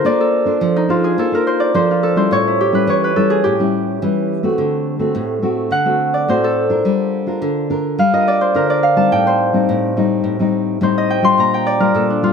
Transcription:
0.00 0.82 D4 soft
0.00 0.90 F4 medium
0.00 0.27 A#4 medium
0.00 1.47 C5 medium
0.04 0.59 A#3 medium
0.04 0.31 D4 medium
0.04 0.32 A4 soft
0.04 0.32 C5 medium
0.04 0.82 D5 medium
0.21 1.10 A4 medium
0.45 0.84 D4 medium
0.45 0.85 A4 medium
0.45 0.85 C5 medium
0.61 1.15 F3 medium
0.76 1.66 D#4 medium
0.89 1.27 D4 medium
0.89 1.91 F4 medium
0.89 1.28 A4 medium
0.89 1.28 C5 medium
1.04 1.25 G#4 medium
1.18 1.72 A#3 medium
1.18 1.41 A4 medium
1.32 1.70 D4 medium
1.32 1.71 A4 medium
1.32 2.09 A#4 medium
1.32 1.71 C5 medium
1.47 1.75 C5 medium
1.60 2.38 D5 medium
1.74 2.29 F3 medium
1.74 2.13 D4 medium
1.74 2.13 A4 medium
1.74 2.17 C5 medium
1.74 2.13 C5 medium
1.91 2.54 F4 medium
2.03 3.16 A4 medium
2.16 2.69 G3 medium
2.16 2.69 C#4 medium
2.16 2.69 E4 medium
2.16 2.38 C5 medium
2.31 2.85 A2 medium
2.31 2.89 C#5 loud
2.48 5.09 E4 medium
2.61 3.36 G4 medium
2.72 3.11 G3 medium
2.72 3.12 C#4 medium
2.72 3.12 E4 medium
2.72 3.04 B4 medium
2.87 3.42 E3 medium
2.87 4.81 C#5 medium
3.04 5.09 B4 medium
3.16 3.55 G3 medium
3.16 3.55 C#4 medium
3.16 3.55 E4 medium
3.16 3.36 A4 medium
3.30 3.50 G#4 medium
3.44 3.99 A2 medium
3.44 5.78 G4 medium
3.59 3.98 G3 medium
3.59 3.98 C#4 medium
3.59 3.98 E4 medium
4.02 4.56 E3 medium
4.02 4.40 G3 medium
4.02 4.41 C#4 medium
4.02 4.41 E4 medium
4.43 4.96 A3 medium
4.43 4.96 C4 medium
4.43 4.97 F#4 medium
4.58 5.12 D3 medium
4.99 5.38 A3 medium
4.99 5.39 C4 medium
4.99 5.39 F#4 medium
5.15 5.69 A2 medium
5.42 5.70 A3 medium
5.42 5.70 C4 medium
5.42 5.70 F#4 medium
5.71 6.25 D3 medium
5.71 7.33 F#5 medium
5.85 6.24 A3 medium
5.85 6.24 C4 medium
5.85 6.24 F#4 medium
6.14 7.99 D5 medium
6.28 6.83 A2 medium
6.28 6.67 A3 medium
6.28 6.67 C4 medium
6.28 6.67 F#4 medium
6.28 8.27 C5 medium
6.44 8.62 A4 medium
6.70 7.23 D4 medium
6.70 7.23 F4 medium
6.70 7.23 A#4 medium
6.85 7.39 G3 medium
7.26 7.65 D4 medium
7.26 7.66 F4 medium
7.26 7.66 A#4 medium
7.42 7.96 D3 medium
7.70 7.97 D4 medium
7.70 7.97 F4 medium
7.70 7.97 A#4 medium
7.98 8.53 G3 medium
7.98 8.83 F5 medium
8.13 8.51 D4 medium
8.13 8.51 F4 medium
8.13 8.51 A#4 medium
8.13 8.34 D#5 medium
8.28 8.69 D5 medium
8.41 9.26 C5 medium
8.54 9.09 D3 medium
8.54 8.82 D4 medium
8.54 8.82 F4 medium
8.54 8.82 A#4 medium
8.54 9.03 A#4 medium
8.70 10.55 D5 medium
8.83 10.49 F5 medium
8.96 9.49 G3 medium
8.96 9.50 C4 medium
8.96 9.50 D#4 medium
8.96 10.42 A5 medium
9.12 9.66 A2 medium
9.12 10.67 G5 medium
9.27 10.83 C5 medium
9.53 9.92 G3 medium
9.53 9.92 C4 medium
9.53 9.93 D#4 medium
9.69 10.22 A2 medium
9.96 10.35 G3 medium
9.96 10.35 C4 medium
9.96 10.35 D#4 medium
10.24 10.78 A2 medium
10.39 10.77 G3 medium
10.39 10.78 C4 medium
10.39 10.78 D#4 medium
10.81 11.35 A2 medium
10.81 11.20 G3 medium
10.81 11.20 C4 medium
10.81 11.20 D#4 medium
10.81 12.33 C5 medium
10.98 11.73 D#5 medium
11.10 11.54 G5 medium
11.22 11.76 G3 medium
11.22 11.76 D4 medium
11.22 11.76 F4 medium
11.22 12.33 C6 loud
11.38 11.92 A#2 medium
11.38 12.02 A#5 medium
11.54 12.33 G5 medium
11.67 12.33 D5 medium
11.80 12.19 G3 medium
11.80 12.19 D4 medium
11.80 12.19 F4 medium
11.80 12.02 A#4 medium
11.95 12.33 A#2 medium
11.95 12.33 A4 medium
12.10 12.33 D4 medium
12.22 12.33 G3 medium
12.22 12.33 D4 medium
12.22 12.33 F4 medium

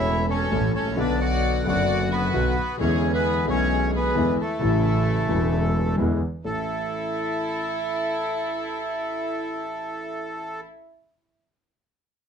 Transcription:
0.00 0.48 E1 medium
0.00 0.48 E1 loud
0.00 0.48 E2 medium
0.00 0.47 E3 medium
0.00 0.48 A3 medium
0.00 0.49 C#4 medium
0.00 0.26 E4 medium
0.00 0.49 A4 medium
0.00 0.26 C#5 medium
0.00 0.26 E5 loud
0.30 0.72 C#4 medium
0.30 0.72 A4 medium
0.30 0.72 C#5 loud
0.51 0.71 A1 loud
0.51 0.71 A1 medium
0.51 0.71 A2 medium
0.51 0.71 E3 medium
0.51 0.71 A3 medium
0.51 0.71 C#4 medium
0.51 0.71 A4 medium
0.75 0.97 A1 medium
0.75 0.97 C#4 medium
0.75 0.96 A4 medium
0.75 0.99 C#5 loud
0.80 0.86 G#1 medium
0.85 0.92 A1 medium
0.92 0.98 A#1 medium
0.92 1.61 D3 medium
0.96 1.62 B1 loud
0.96 1.63 B1 loud
0.96 1.62 B2 medium
0.96 1.62 F#3 medium
0.96 1.63 B3 medium
0.96 1.20 D4 medium
0.96 1.63 F#4 medium
0.96 1.20 B4 medium
0.96 1.22 D5 loud
1.21 1.64 F#4 medium
1.21 1.63 D5 loud
1.21 1.67 F#5 loud
1.64 2.31 F#1 medium
1.64 2.31 F#1 loud
1.64 2.31 F#2 medium
1.64 2.30 D3 medium
1.64 2.30 F#3 medium
1.64 2.31 B3 medium
1.64 2.09 D5 loud
1.68 2.32 F#4 medium
1.68 2.10 F#4 medium
1.68 2.14 F#5 loud
2.11 2.77 B3 medium
2.11 2.75 F#4 medium
2.11 2.76 B4 loud
2.34 2.53 B1 medium
2.34 2.54 B1 loud
2.34 2.53 B2 medium
2.34 2.53 D3 medium
2.34 2.53 F#3 medium
2.34 2.53 B3 medium
2.34 2.53 F#4 medium
2.77 3.44 E2 medium
2.77 3.45 E2 loud
2.77 3.43 D3 medium
2.77 3.44 E3 medium
2.77 3.44 G#3 medium
2.77 3.44 B3 medium
2.77 3.45 E4 loud
2.77 3.12 G#4 medium
2.77 3.12 C#5 loud
2.81 3.12 C#4 medium
3.13 3.46 B3 medium
3.13 3.45 G#4 medium
3.13 3.46 B4 loud
3.45 4.12 B1 medium
3.45 4.12 B1 loud
3.45 4.12 B2 loud
3.45 4.11 D3 medium
3.45 4.12 G#3 medium
3.45 4.13 B3 medium
3.45 3.90 G#4 medium
3.50 3.91 C#4 medium
3.50 4.13 E4 medium
3.50 3.91 C#5 loud
3.93 4.37 B3 medium
3.93 4.35 G#4 medium
3.93 4.37 B4 loud
4.15 4.35 E2 loud
4.15 4.35 D3 medium
4.15 4.35 E3 loud
4.15 4.35 G#3 medium
4.15 4.35 B3 medium
4.15 4.35 E4 medium
4.39 5.96 A3 medium
4.39 5.95 E4 medium
4.39 5.96 A4 loud
4.59 5.26 A1 loud
4.59 5.26 A2 medium
4.59 5.25 C#3 medium
4.59 5.25 E3 medium
4.59 5.26 A3 medium
4.59 5.27 E4 medium
5.27 5.95 E1 medium
5.27 5.95 E1 loud
5.27 5.95 E2 loud
5.27 5.94 C#3 medium
5.27 5.94 E3 medium
5.27 5.95 A3 medium
5.31 5.96 E4 medium
5.98 6.17 E2 medium
5.98 6.18 E2 loud
5.98 6.17 D3 medium
5.98 6.17 E3 medium
5.98 6.17 G#3 medium
5.98 6.17 B3 medium
5.98 6.18 E4 medium
6.44 10.60 A1 medium
6.44 6.64 A1 medium
6.44 10.59 A3 medium
6.44 10.60 C#4 soft
6.44 10.59 E4 medium
6.44 10.61 E4 medium
6.44 10.61 A4 loud

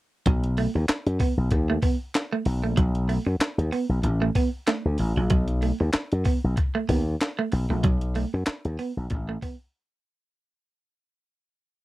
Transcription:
0.26 0.66 B1 loud
0.26 0.39 F#3 loud
0.26 kick loud
0.26 closed hi-hat medium
0.44 closed hi-hat medium
0.57 0.70 A3 medium
0.57 open hi-hat medium
0.75 0.86 D#2 medium
0.75 muted clean electric guitar stroke soft
0.89 muted slap bass stroke soft
0.89 snare loud
0.89 clap loud
0.89 closed hi-hat medium
1.06 1.18 F#2 medium
1.06 closed hi-hat medium
1.20 1.33 B3 medium
1.20 kick medium
1.20 open hi-hat medium
1.37 1.49 B1 medium
1.51 1.77 D#2 loud
1.51 muted clean electric guitar stroke soft
1.51 kick medium
1.51 closed hi-hat medium
1.70 1.79 A3 medium
1.82 1.96 B3 medium
1.82 kick medium
1.82 open hi-hat medium
2.15 snare loud
2.15 clap medium
2.15 closed hi-hat medium
2.33 2.42 A3 medium
2.45 2.63 B1 medium
2.45 muted clean electric guitar stroke soft
2.45 open hi-hat medium
2.63 2.75 A#1 medium
2.63 2.73 A3 medium
2.77 3.17 B1 loud
2.77 2.90 F#3 medium
2.77 kick loud
2.77 closed hi-hat medium
2.95 closed hi-hat medium
3.09 3.22 A3 medium
3.09 open hi-hat medium
3.26 3.38 F#2 medium
3.26 muted clean electric guitar stroke soft
3.40 muted slap bass stroke soft
3.40 snare loud
3.40 clap loud
3.40 closed hi-hat medium
3.58 3.69 D#2 medium
3.58 closed hi-hat medium
3.72 3.85 B3 medium
3.72 open hi-hat medium
3.89 4.01 B1 medium
4.03 4.29 A1 medium
4.03 muted clean electric guitar stroke soft
4.03 closed hi-hat medium
4.22 4.31 A3 medium
4.35 4.48 B3 medium
4.35 kick medium
4.35 open hi-hat medium
4.67 4.80 A3 medium
4.67 snare loud
4.67 clap medium
4.67 closed hi-hat medium
4.85 4.96 D2 medium
4.98 5.13 A1 medium
4.98 muted clean electric guitar stroke soft
4.98 open hi-hat medium
5.17 5.31 A#1 loud
5.17 5.27 F#3 medium
5.30 5.70 B1 loud
5.30 5.43 F#3 loud
5.30 kick loud
5.30 closed hi-hat medium
5.48 closed hi-hat medium
5.62 5.75 A3 medium
5.62 open hi-hat medium
5.80 5.91 D#2 loud
5.80 muted clean electric guitar stroke soft
5.93 muted slap bass stroke soft
5.93 snare loud
5.93 clap loud
5.93 closed hi-hat medium
6.12 6.23 F#2 medium
6.12 closed hi-hat medium
6.25 6.38 B3 medium
6.25 kick medium
6.25 open hi-hat medium
6.44 6.55 B1 medium
6.57 muted clean electric guitar stroke soft
6.57 kick medium
6.57 closed hi-hat medium
6.75 6.85 A3 medium
6.89 7.14 D#2 medium
6.89 7.01 B3 medium
6.89 kick medium
6.89 open hi-hat medium
7.21 snare loud
7.21 clap medium
7.21 closed hi-hat medium
7.39 7.48 A3 medium
7.52 7.67 B1 medium
7.52 muted clean electric guitar stroke soft
7.52 open hi-hat medium
7.70 7.84 A#1 medium
7.70 7.80 A3 medium
7.84 8.24 B1 loud
7.84 7.97 F#3 medium
7.84 kick loud
7.84 closed hi-hat medium
8.01 closed hi-hat medium
8.15 8.28 A3 medium
8.15 open hi-hat medium
8.34 8.45 F#2 medium
8.34 muted clean electric guitar stroke soft
8.46 muted slap bass stroke soft
8.46 snare loud
8.46 clap loud
8.46 closed hi-hat loud
8.65 8.76 D#2 medium
8.65 closed hi-hat medium
8.79 8.91 B3 medium
8.79 open hi-hat medium
8.97 9.08 B1 loud
9.10 9.36 A1 medium
9.10 muted clean electric guitar stroke soft
9.10 kick medium
9.10 closed hi-hat medium
9.29 9.38 A3 medium
9.42 9.55 B3 medium
9.42 kick medium
9.42 open hi-hat medium

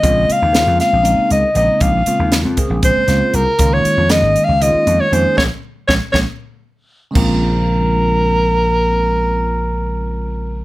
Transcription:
0.00 0.27 A#1 medium
0.00 0.47 C#3 medium
0.00 0.47 G#3 medium
0.00 0.48 A#3 medium
0.00 0.48 C4 medium
0.00 0.34 D#5 medium
0.00 kick loud
0.00 closed hi-hat medium
0.04 0.48 F4 medium
0.29 0.80 F5 loud
0.29 muted slap bass stroke soft
0.29 closed hi-hat medium
0.42 0.65 D#2 medium
0.52 0.97 C#3 medium
0.52 0.98 G#3 medium
0.52 0.98 A#3 medium
0.52 0.98 C4 medium
0.52 0.98 F4 medium
0.52 snare loud
0.52 closed hi-hat medium
0.67 0.79 F2 medium
0.80 1.27 F5 medium
0.80 snare soft
0.80 closed hi-hat medium
0.93 1.16 A#1 medium
1.02 1.48 C#3 medium
1.02 1.48 G#3 medium
1.02 1.49 A#3 medium
1.02 1.48 C4 medium
1.02 1.49 D#4 medium
1.02 closed hi-hat medium
1.18 muted slap bass stroke soft
1.30 1.42 C#2 medium
1.30 1.55 D#5 medium
1.30 closed hi-hat medium
1.54 1.67 A#1 medium
1.54 1.99 C#3 medium
1.54 1.99 G#3 medium
1.54 2.00 A#3 medium
1.54 2.00 C4 medium
1.54 2.00 D#4 medium
1.54 1.83 D#5 medium
1.54 closed hi-hat medium
1.81 2.05 A#1 medium
1.81 2.39 F5 medium
1.81 kick loud
1.81 closed hi-hat medium
2.06 2.51 C#3 medium
2.06 2.51 G#3 medium
2.06 2.51 A#3 medium
2.06 2.51 C4 medium
2.06 2.52 F4 medium
2.06 muted slap bass stroke soft
2.06 closed hi-hat medium
2.19 2.43 D#2 medium
2.32 snare loud
2.32 closed hi-hat medium
2.45 2.57 F2 medium
2.57 3.02 C#3 medium
2.57 3.02 G#3 medium
2.57 3.02 A#3 medium
2.57 3.02 C4 medium
2.57 3.02 G#4 medium
2.57 kick medium
2.57 closed hi-hat medium
2.70 2.94 A#1 medium
2.83 3.37 C5 medium
2.83 kick loud
2.83 closed hi-hat medium
2.96 muted slap bass stroke soft
3.07 3.20 C#2 medium
3.07 3.52 C#3 medium
3.07 3.52 G#3 medium
3.07 3.53 A#3 medium
3.07 3.53 C4 medium
3.07 3.53 F4 medium
3.07 snare soft
3.07 closed hi-hat medium
3.34 3.45 C2 medium
3.34 3.75 A#4 medium
3.34 closed hi-hat medium
3.58 3.83 C#2 medium
3.58 4.03 D#3 medium
3.58 4.03 G#3 medium
3.58 4.04 A#3 medium
3.58 4.04 C#4 medium
3.58 4.04 F4 medium
3.58 kick loud
3.58 closed hi-hat medium
3.73 4.13 C#5 medium
3.85 muted slap bass stroke soft
3.85 closed hi-hat medium
3.97 4.21 F2 medium
4.10 4.54 D#3 medium
4.10 4.55 G#3 medium
4.10 4.55 A#3 medium
4.10 4.55 C#4 medium
4.10 4.55 G#4 medium
4.10 4.46 D#5 loud
4.10 snare loud
4.10 closed hi-hat medium
4.22 4.34 G#1 medium
4.36 closed hi-hat medium
4.45 4.64 F5 medium
4.49 4.72 C#2 medium
4.60 5.05 D#3 medium
4.60 5.05 G#3 medium
4.60 5.05 A#3 medium
4.60 5.06 C#4 medium
4.60 5.06 F4 medium
4.60 5.02 D#5 loud
4.60 closed hi-hat medium
4.74 muted slap bass stroke soft
4.87 4.98 F2 medium
4.87 closed hi-hat medium
5.00 5.15 C#5 medium
5.11 5.24 F2 medium
5.11 5.37 D#3 medium
5.11 5.36 G#3 medium
5.11 5.36 A#3 medium
5.11 5.36 C#4 medium
5.11 5.38 G#4 medium
5.11 5.37 C5 medium
5.11 closed hi-hat medium
5.37 5.47 A#1 medium
5.37 5.45 G#3 medium
5.37 5.45 A#3 medium
5.37 5.45 C#4 medium
5.37 5.44 C#5 medium
5.37 kick medium
5.37 snare medium
5.88 5.98 A#1 medium
5.88 5.97 G#3 medium
5.88 5.97 A#3 medium
5.88 5.97 C#4 medium
5.88 5.94 C#5 medium
5.88 kick medium
5.88 snare medium
6.12 6.23 A#1 medium
6.12 6.21 G#3 medium
6.12 6.21 A#3 medium
6.12 6.21 C#4 medium
6.12 6.19 C#5 medium
6.12 kick medium
6.12 snare medium
7.11 10.65 C#3 medium
7.11 10.65 G#3 medium
7.11 10.65 A#3 medium
7.15 10.65 A#1 medium
7.15 10.65 C4 medium
7.15 10.65 F4 medium
7.15 10.65 A#4 medium
7.15 kick medium
7.15 crash medium

